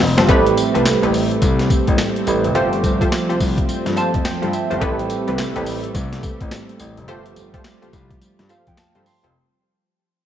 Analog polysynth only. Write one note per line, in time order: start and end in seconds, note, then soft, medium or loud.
0.17 0.28 F4 medium
0.17 0.28 G4 medium
0.17 0.28 A4 medium
0.17 0.28 C5 medium
0.28 0.45 C4 loud
0.28 0.45 G4 loud
0.28 0.46 A4 medium
0.28 0.46 B4 loud
0.74 0.85 C4 medium
0.74 0.85 G4 medium
0.74 0.85 A4 medium
0.74 0.85 B4 medium
1.02 1.13 C4 medium
1.02 1.13 G4 medium
1.02 1.13 A4 medium
1.02 1.13 B4 medium
2.55 2.72 F4 loud
2.55 2.72 G4 medium
2.55 2.72 A4 loud
2.55 2.72 C5 loud
3.01 3.11 F4 medium
3.01 3.11 G4 medium
3.01 3.11 A4 medium
3.01 3.11 C5 medium
3.29 3.39 F4 medium
3.29 3.40 G4 medium
3.29 3.40 A4 medium
3.29 3.40 C5 medium
3.96 4.13 F4 medium
3.96 4.13 G4 medium
3.96 4.13 A4 medium
3.96 4.13 C5 medium
4.42 4.53 F4 medium
4.42 4.52 G4 medium
4.42 4.53 A4 medium
4.42 4.53 C5 medium
4.70 4.81 F4 medium
4.70 4.80 G4 medium
4.70 4.80 A4 medium
4.70 4.81 C5 medium
4.81 4.98 C4 loud
4.81 4.98 G4 medium
4.81 4.98 A4 loud
4.81 4.98 B4 loud
5.27 5.38 C4 medium
5.27 5.38 G4 medium
5.27 5.38 A4 medium
5.27 5.38 B4 medium
5.55 5.66 C4 medium
5.55 5.66 G4 medium
5.55 5.66 A4 medium
5.55 5.66 B4 medium
7.08 7.25 F4 loud
7.08 7.25 G4 medium
7.08 7.25 A4 loud
7.08 7.25 C5 loud
7.54 7.64 F4 medium
7.54 7.64 G4 medium
7.54 7.64 A4 medium
7.54 7.64 C5 medium
7.82 7.92 F4 medium
7.82 7.92 G4 medium
7.82 7.92 A4 medium
7.82 7.93 C5 medium
8.49 8.66 F4 medium
8.49 8.66 G4 medium
8.49 8.66 A4 medium
8.49 8.66 C5 medium
8.95 9.06 F4 medium
8.95 9.06 G4 medium
8.95 9.06 A4 medium
8.95 9.06 C5 medium
9.23 9.34 F4 medium
9.23 9.34 G4 medium
9.23 9.34 A4 medium
9.23 9.34 C5 medium